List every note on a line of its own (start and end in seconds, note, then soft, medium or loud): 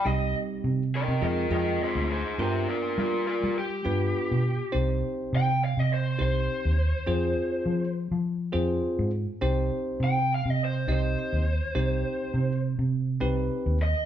0.05 0.32 C2 medium
0.05 0.82 G3 medium
0.05 0.82 C4 medium
0.05 0.82 D#4 medium
0.05 0.82 G4 medium
0.05 0.34 D#5 loud
0.64 1.05 C3 loud
0.95 1.23 A#4 medium
0.95 1.23 D#5 medium
1.08 1.21 C3 medium
1.22 1.49 F2 medium
1.22 1.46 G#3 medium
1.22 1.46 C4 medium
1.22 1.46 F4 medium
1.22 1.46 G#4 medium
1.22 1.51 A#4 medium
1.22 1.52 D#5 medium
1.50 1.78 F2 medium
1.50 2.08 G#3 medium
1.50 2.08 C4 medium
1.50 2.08 F4 medium
1.50 2.08 G#4 medium
1.50 1.80 A#4 medium
1.55 1.82 D#5 medium
1.83 2.10 G#4 medium
1.83 2.11 C5 medium
1.95 2.23 D2 medium
2.12 2.39 G#4 medium
2.12 2.40 C5 medium
2.38 2.66 G2 medium
2.38 3.16 B3 medium
2.38 3.16 D4 medium
2.38 3.16 F4 medium
2.38 2.67 G4 medium
2.38 3.16 A#4 medium
2.38 2.69 C5 medium
2.69 2.96 F4 medium
2.69 2.98 A#4 medium
2.98 3.39 G3 loud
2.98 3.26 F4 medium
2.98 3.27 A#4 medium
3.27 3.54 F4 medium
3.27 3.56 A#4 medium
3.43 3.83 G3 medium
3.59 4.71 G4 medium
3.85 4.13 G2 medium
3.85 4.42 B3 medium
3.85 4.42 D4 medium
3.85 4.42 F4 medium
3.85 4.43 B4 medium
4.31 4.58 B2 medium
4.72 5.01 C2 medium
4.72 5.49 C4 medium
4.72 5.50 D#4 medium
4.72 5.50 G4 medium
4.72 5.49 C5 medium
5.33 5.73 C3 loud
5.33 5.62 G5 medium
5.64 5.78 F5 medium
5.77 6.16 C3 medium
5.77 5.91 D#5 medium
5.94 6.20 C5 medium
6.18 6.47 C2 medium
6.18 6.76 C4 medium
6.18 6.76 D#4 medium
6.18 6.76 G4 medium
6.18 6.76 C5 medium
6.18 7.92 C5 medium
6.65 6.92 D#2 medium
7.07 7.34 F2 medium
7.07 7.84 C4 medium
7.07 7.84 F4 medium
7.07 7.84 G#4 medium
7.07 7.84 C5 medium
7.66 8.07 F3 loud
8.12 8.50 F3 medium
8.52 8.81 F2 medium
8.52 9.10 C4 medium
8.52 9.10 F4 medium
8.52 9.10 G#4 medium
8.52 9.10 C5 medium
8.99 9.25 G#2 loud
9.41 9.68 C2 medium
9.41 10.18 C4 medium
9.41 10.18 D#4 medium
9.41 10.18 G4 medium
9.41 10.18 C5 loud
10.00 10.41 C3 loud
10.04 10.30 G5 medium
10.34 10.50 F5 medium
10.46 10.84 C3 medium
10.50 10.61 D#5 medium
10.65 10.90 C5 medium
10.87 11.14 C2 medium
10.87 11.45 C4 medium
10.87 11.45 D#4 medium
10.87 11.45 G4 medium
10.87 11.45 D#5 medium
10.92 12.61 C5 medium
11.33 11.59 D#2 medium
11.75 12.02 C2 medium
11.75 12.51 C4 medium
11.75 12.52 D#4 medium
11.75 12.51 G4 medium
11.75 12.52 C5 medium
12.34 12.75 C3 loud
12.79 13.18 C3 medium
13.20 13.48 C2 medium
13.20 13.78 C4 medium
13.20 13.78 D#4 medium
13.20 13.78 G4 medium
13.20 13.78 B4 medium
13.66 13.93 D#2 loud
13.82 14.05 D#5 medium